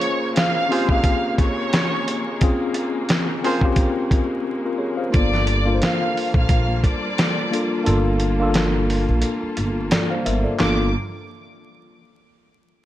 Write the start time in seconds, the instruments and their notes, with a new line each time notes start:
Already playing: string section C#3 G#3 A#3, tine electric piano A#3 C#4 F4 G#4 C5 C#5, violin section C#5 C#6
0.01 closed hi-hat
0.36 violin section F5 F6, snare, closed hi-hat
0.69 tine electric piano C4 C#4 F4 G4, trumpet section F4 G#4 C5, open hi-hat
0.88 tine electric piano A#3 C#4 F4 G#4, violin section F5 F6, kick
1.04 kick, closed hi-hat
1.38 violin section C#5 C#6, kick, closed hi-hat
1.73 snare, closed hi-hat
2.08 closed hi-hat
2.41 tine electric piano C4 C#4 F4 G#4, kick, closed hi-hat
2.74 closed hi-hat
3.09 snare, closed hi-hat
3.43 tine electric piano C4 C#4 F4 A#4, trumpet section F4 G#4 C5, open hi-hat
3.61 tine electric piano C4 C#4 F4 G4, kick
3.76 kick, closed hi-hat
4.11 kick, closed hi-hat
4.65 tine electric piano F4 A#4
4.78 tine electric piano G#4 C#5
4.97 tine electric piano C5 F5
5.10 string section G3 A#3 F4 A4, tine electric piano A#3 D4 F4 A4, violin section D5, closed hi-hat
5.14 upright bass G1, violin section D6, kick
5.34 snare
5.47 closed hi-hat
5.65 tine electric piano A#3 D4 F4 A#4
5.75 tine electric piano C5
5.82 violin section F5 F6, snare, closed hi-hat
6.17 open hi-hat
6.34 upright bass A#1, violin section F5 F6, kick
6.49 upright bass A#1, kick, closed hi-hat
6.84 violin section D5 D6, kick, closed hi-hat
7.18 snare, closed hi-hat
7.51 tine electric piano A#3 D4 F4 A4, closed hi-hat
7.84 upright bass G1, tine electric piano A#3 D4 F4 A4, closed hi-hat
8.20 closed hi-hat
8.40 tine electric piano A#3 D4 F4 A4
8.54 snare, closed hi-hat
8.90 open hi-hat
9.09 upright bass A#1
9.22 closed hi-hat
9.43 muted upright bass stroke
9.57 upright bass G1, closed hi-hat
9.91 tine electric piano A4 D5, snare, closed hi-hat
10.10 tine electric piano C5 F5
10.26 upright bass G1, tine electric piano A#4 E5, closed hi-hat
10.44 tine electric piano A4 D5
10.59 upright bass G1, string section G3 A#3 F4 A4, tine electric piano A#3 D4 F4 A4, violin section D6, snare, clap